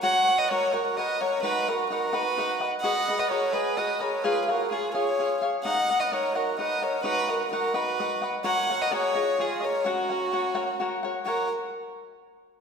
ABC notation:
X:1
M:6/8
L:1/16
Q:3/8=86
K:F#
V:1 name="Cavaquinho"
[FAcf]2 [Acf]2 [FAcf]2 [FAcf]2 [FAcf]2 [Acf]2 | [DBdf]2 [Bdf]2 [DBdf]2 [DBdf]2 [DBdf]2 [Bdf]2 | [FGBd]2 [GBd]2 [FGBd]2 [FGBd]2 [FGBd]2 [GBd]2 | [EGce]2 [Gce]2 [EGce]2 [EGce]2 [EGce]2 [Gce]2 |
[DAdf]2 [Adf]2 [DAdf]2 [DAdf]2 [DAdf]2 [Adf]2 | [DBdf]2 [Bdf]2 [DBdf]2 [DBdf]2 [DBdf]2 [Bdf]2 | [FAcf]2 [Acf]2 [FAcf]2 [EGcd]2 [EGcd]2 [Gcd]2 | [FAcf]2 [Acf]2 [FAcf]2 [FAcf]2 [FAcf]2 [Acf]2 |
[FAcf]2 z8 z2 |]
V:2 name="Violin"
f3 d c2 A2 d2 c2 | B2 A2 A2 B4- B/2 z3/2 | f3 d c2 B2 d2 c2 | B3/2 B/2 A2 G2 c4- c/2 z3/2 |
f3 d c2 A2 d2 c2 | B2 A2 A2 B4- B/2 z3/2 | f3 d c4 G2 c2 | F8 z4 |
A2 z8 z2 |]
V:3 name="Trumpet"
c3 B A2 F2 B2 A2 | F2 F2 F2 F4- F/2 z3/2 | d3 B A2 G2 B2 A2 | G3/2 G/2 F2 E2 G4- G/2 z3/2 |
d3 B A2 F2 B2 A2 | F2 F2 F2 F4- F/2 z3/2 | c3 B G4 E2 A2 | C8 z4 |
F2 z8 z2 |]